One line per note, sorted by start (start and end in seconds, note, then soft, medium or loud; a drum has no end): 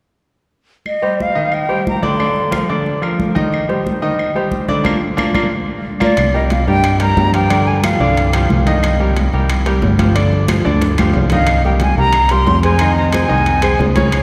0.86 1.23 D#5 medium
0.86 high conga soft
0.86 claves medium
1.02 1.30 G3 medium
1.02 1.30 G4 medium
1.02 1.30 C5 medium
1.02 high conga soft
1.20 1.56 F5 medium
1.20 high conga soft
1.35 1.63 D#3 medium
1.35 1.63 D#4 medium
1.35 1.63 D#5 medium
1.35 high conga soft
1.52 1.87 G5 medium
1.52 high conga soft
1.52 claves medium
1.69 1.96 G3 medium
1.69 1.97 G4 medium
1.69 1.97 C5 medium
1.69 high conga soft
1.87 2.06 A#5 medium
1.87 high conga medium
2.02 2.16 D3 medium
2.02 2.16 D4 medium
2.02 2.17 D5 medium
2.02 2.54 C6 medium
2.02 high conga medium
2.19 2.47 D3 medium
2.19 2.47 D4 medium
2.19 2.47 D5 medium
2.19 high conga soft
2.19 claves medium
2.36 high conga soft
2.51 2.65 F3 medium
2.51 2.66 F4 medium
2.51 2.66 A#4 medium
2.51 high conga medium
2.51 claves medium
2.69 2.97 D3 medium
2.69 2.97 D4 medium
2.69 2.97 D5 medium
2.69 high conga soft
2.86 high conga soft
3.02 3.29 F3 medium
3.02 3.29 F4 medium
3.02 3.30 A#4 medium
3.02 high conga soft
3.02 claves medium
3.20 high conga medium
3.35 3.63 D#3 medium
3.35 3.63 D#4 medium
3.35 3.63 D#5 medium
3.35 high conga medium
3.53 high conga soft
3.53 claves medium
3.69 3.96 G3 medium
3.69 3.96 G4 medium
3.69 3.96 C5 medium
3.69 high conga soft
3.87 high conga medium
4.02 4.29 D#3 medium
4.02 4.30 D#4 medium
4.02 4.30 D#5 medium
4.02 high conga soft
4.19 high conga soft
4.19 claves medium
4.36 4.63 G3 medium
4.36 4.63 G4 medium
4.36 4.63 C5 medium
4.36 high conga soft
4.52 high conga medium
4.68 4.82 D3 medium
4.68 4.82 D4 medium
4.68 4.83 D5 medium
4.68 high conga medium
4.84 4.95 A#3 medium
4.84 4.95 D4 medium
4.84 4.96 F4 medium
4.84 high conga loud
4.84 claves medium
5.17 5.29 A#3 medium
5.17 5.28 D4 medium
5.17 5.28 F4 medium
5.17 high conga medium
5.17 claves medium
5.34 5.45 A#3 medium
5.34 5.45 D4 medium
5.34 5.45 F4 medium
5.34 high conga medium
5.34 claves loud
6.00 6.11 A#3 medium
6.00 6.11 D4 medium
6.00 6.12 F4 medium
6.00 6.37 D5 medium
6.00 high conga medium
6.00 claves medium
6.17 6.64 C2 medium
6.17 high conga soft
6.17 high timbale medium
6.17 claves medium
6.34 6.62 G3 medium
6.34 6.62 G4 medium
6.34 6.62 A#4 medium
6.34 6.53 D#5 medium
6.34 high conga soft
6.50 6.67 F5 medium
6.50 high conga medium
6.50 high timbale medium
6.67 7.14 G2 medium
6.67 6.95 G3 medium
6.67 6.95 G4 medium
6.67 6.95 A#4 medium
6.67 6.98 G5 medium
6.67 high conga soft
6.84 high conga soft
6.84 high timbale medium
6.84 claves medium
7.00 7.28 G3 medium
7.00 7.28 G4 medium
7.00 7.28 A#4 medium
7.00 7.32 A#5 loud
7.00 high conga soft
7.00 high timbale medium
7.17 7.94 G2 medium
7.17 high conga medium
7.17 low timbale medium
7.33 7.47 F3 medium
7.33 7.48 F4 medium
7.33 7.48 G4 medium
7.33 7.69 G5 medium
7.33 high timbale medium
7.50 7.77 D3 medium
7.50 7.78 D4 medium
7.50 7.78 D5 medium
7.50 high conga soft
7.50 high timbale medium
7.50 claves medium
7.67 7.86 G#5 medium
7.67 high conga soft
7.84 7.97 F3 medium
7.84 7.97 F4 medium
7.84 7.98 G4 medium
7.84 8.50 F5 medium
7.84 high conga loud
7.84 high timbale medium
7.84 claves medium
8.00 8.46 C2 medium
8.00 8.27 D3 medium
8.00 8.28 D4 medium
8.00 8.28 D5 medium
8.00 high conga soft
8.17 high conga soft
8.17 high timbale medium
8.33 8.60 F3 medium
8.33 8.61 F4 medium
8.33 8.61 G4 medium
8.33 high conga soft
8.33 high timbale medium
8.33 claves medium
8.50 9.27 C2 medium
8.50 high conga medium
8.66 8.94 D#3 medium
8.66 8.94 D#4 medium
8.66 8.94 D#5 medium
8.66 high conga medium
8.66 high timbale medium
8.83 high conga soft
8.83 high timbale medium
8.83 claves medium
9.00 9.27 G3 medium
9.00 9.27 G4 medium
9.00 9.27 A#4 medium
9.00 high conga soft
9.17 high conga medium
9.17 high timbale medium
9.33 9.79 C2 medium
9.33 9.60 G3 medium
9.33 9.61 G4 medium
9.33 9.61 A#4 medium
9.33 high conga soft
9.49 high conga soft
9.49 high timbale medium
9.49 claves medium
9.66 9.93 G3 medium
9.66 9.94 G4 medium
9.66 9.94 A#4 medium
9.66 high conga soft
9.66 high timbale medium
9.82 10.60 G1 medium
9.82 high conga medium
9.82 low timbale medium
9.99 10.13 F3 medium
9.99 10.13 F4 medium
9.99 10.13 G4 medium
9.99 high conga medium
9.99 high timbale medium
10.15 10.43 D3 medium
10.15 10.43 D4 medium
10.15 10.43 D5 medium
10.15 high conga soft
10.15 high timbale medium
10.15 claves medium
10.32 high conga soft
10.48 10.62 F3 medium
10.48 10.63 F4 medium
10.48 10.63 G4 medium
10.48 high conga medium
10.48 high timbale medium
10.48 claves medium
10.65 11.12 D2 medium
10.65 10.92 D3 medium
10.65 10.92 D4 medium
10.65 10.92 D5 medium
10.65 high conga soft
10.81 high conga medium
10.81 high timbale medium
10.98 11.26 F3 medium
10.98 11.26 F4 medium
10.98 11.26 G4 medium
10.98 high conga medium
10.98 high timbale medium
10.98 claves medium
11.13 11.92 C2 medium
11.13 low timbale medium
11.30 11.59 D#3 medium
11.30 11.59 D#4 medium
11.30 11.59 D#5 medium
11.30 11.63 F5 medium
11.30 low conga medium
11.30 high timbale medium
11.47 high conga soft
11.47 high timbale medium
11.47 claves medium
11.65 11.92 G3 medium
11.65 11.92 G4 medium
11.65 11.92 A#4 medium
11.65 11.71 G5 medium
11.65 high conga soft
11.80 11.97 G#5 medium
11.80 high conga medium
11.80 high timbale medium
11.97 12.44 C2 medium
11.97 12.25 G3 medium
11.97 12.25 G4 medium
11.97 12.26 A#4 medium
11.97 12.33 A#5 loud
11.97 high conga soft
12.13 high conga soft
12.13 high timbale medium
12.13 claves medium
12.29 12.58 G3 medium
12.29 12.58 G4 medium
12.29 12.59 A#4 medium
12.29 12.63 C6 loud
12.29 high conga soft
12.29 high timbale medium
12.47 13.25 F2 medium
12.47 high conga medium
12.47 low timbale medium
12.63 12.78 G#3 medium
12.63 12.78 G#4 medium
12.63 12.78 C5 medium
12.63 12.95 G#5 medium
12.63 high timbale medium
12.79 13.08 D#3 medium
12.79 13.08 D#4 medium
12.79 13.08 D#5 medium
12.79 high conga soft
12.79 high timbale medium
12.79 claves medium
12.96 13.13 A#5 medium
12.96 high conga soft
13.12 13.27 G#3 medium
13.12 13.27 G#4 medium
13.12 13.27 C5 medium
13.12 13.79 G#5 medium
13.12 high conga medium
13.12 high timbale medium
13.12 claves medium
13.28 13.77 C2 medium
13.28 13.56 D#3 medium
13.28 13.57 D#4 medium
13.28 13.57 D#5 medium
13.28 high conga soft
13.46 high conga soft
13.46 high timbale medium
13.62 13.90 G#3 medium
13.62 13.90 G#4 medium
13.62 13.90 C5 medium
13.62 high conga soft
13.62 high timbale loud
13.62 claves medium
13.79 14.23 C#2 medium
13.79 high conga medium
13.79 low timbale medium
13.95 14.23 C#3 medium
13.95 14.23 C#4 medium
13.95 14.23 C#5 medium
13.95 high conga medium
13.95 high timbale medium
14.12 high conga soft
14.12 high timbale medium
14.12 claves medium